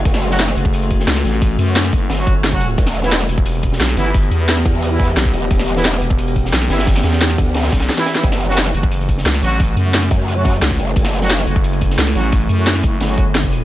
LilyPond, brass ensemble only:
\new Staff \with { instrumentName = "Brass ensemble" } { \time 4/4 \key fis \phrygian \tempo 4 = 176 r8. <fis cis' fis'>16 r2. | r8. <fis cis' fis'>8 r4 <fis cis' fis'>8 r8 <fis cis' fis'>8 r16 | r8. <e b e'>16 r2 r8 <e b e'>8 | r8. <e b e'>8 r4 <e b e'>8 r4 r16 |
r8. <e b e'>16 r2 r8 <e b e'>8 | r2. r16 <e b e'>8 <e b e'>16 | r8. <fis cis' fis'>16 r2 r8 <fis cis' fis'>8 | r8. <fis cis' fis'>8 r4 <fis cis' fis'>8 r4 r16 |
r8. <fis cis' fis'>16 r2 r8 <fis cis' fis'>8 | r8. <fis cis' fis'>8 r4 <fis cis' fis'>8 r4 r16 | }